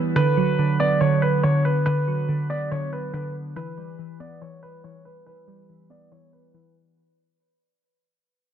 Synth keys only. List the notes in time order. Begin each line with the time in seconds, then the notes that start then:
Already playing: E3 G3 B3
0.16 D3
0.37 F#3
0.59 D3
0.80 B3
1.01 D3
1.44 D3
1.86 D3
2.08 F#3
2.28 D3
2.50 B3
2.71 D3
3.13 D3
3.56 E3
3.77 G3
3.99 E3
4.20 B3
4.41 E3
4.84 E3
5.27 E3
5.47 G3
5.69 E3
5.90 B3
6.11 E3
6.54 E3